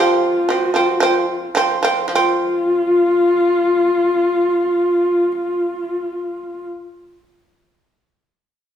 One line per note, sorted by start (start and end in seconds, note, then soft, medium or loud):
0.00 0.38 F3 loud
0.00 0.39 C4 loud
0.00 0.54 F4 medium
0.49 0.70 F3 medium
0.49 0.71 C4 medium
0.54 0.69 F#4 medium
0.69 0.86 F4 medium
0.74 0.96 F3 medium
0.74 0.97 C4 medium
0.86 1.01 F#4 medium
1.00 1.45 F3 medium
1.00 1.46 C4 loud
1.00 1.57 F4 medium
1.55 1.78 F3 medium
1.55 1.79 C4 loud
1.83 2.06 F3 medium
1.83 2.07 C4 loud
2.08 6.61 F3 medium
2.12 6.69 C4 medium
2.12 6.66 F4 medium